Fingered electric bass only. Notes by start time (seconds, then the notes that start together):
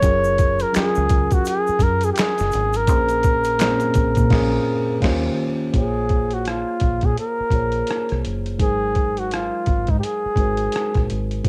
0.04 F#1
0.76 muted fingered electric bass stroke
0.97 C#2
1.69 muted fingered electric bass stroke
1.80 F#2
2.40 F#1
2.55 G#1
2.89 A#1
3.97 A#1
4.18 A#2
4.32 A#1
5.03 D#2
5.75 A#1
6.83 A#1
7.04 A#2
7.40 muted fingered electric bass stroke
7.52 A#1
8.12 C2
8.26 F#1
8.61 G#1
9.68 G#1
9.90 G#2
10.26 muted fingered electric bass stroke
10.37 G#1
10.97 A#1
11.11 G#1